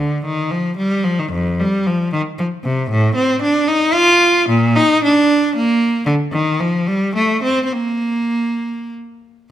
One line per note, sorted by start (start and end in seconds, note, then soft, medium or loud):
0.00 0.24 D3 medium
0.25 0.50 D#3 medium
0.51 0.77 F3 medium
0.77 1.03 G3 medium
1.04 1.18 F3 medium
1.19 1.32 D#3 medium
1.32 1.59 F2 medium
1.60 1.86 G3 medium
1.87 2.13 F3 medium
2.13 2.21 D#3 medium
2.39 2.47 F3 medium
2.64 2.89 C3 medium
2.90 3.16 A2 medium
3.15 3.41 C4 medium
3.42 3.68 D4 medium
3.68 3.94 D#4 medium
3.93 4.49 F4 loud
4.49 4.77 A#2 loud
4.76 5.04 D#4 loud
5.04 5.55 D4 loud
5.56 6.06 A#3 loud
6.06 6.14 D3 medium
6.32 6.59 D#3 medium
6.60 6.87 F3 medium
6.87 7.15 G3 medium
7.15 7.43 A3 medium
7.43 7.64 C4 medium
7.65 7.73 C4 medium
7.73 8.91 A#3 medium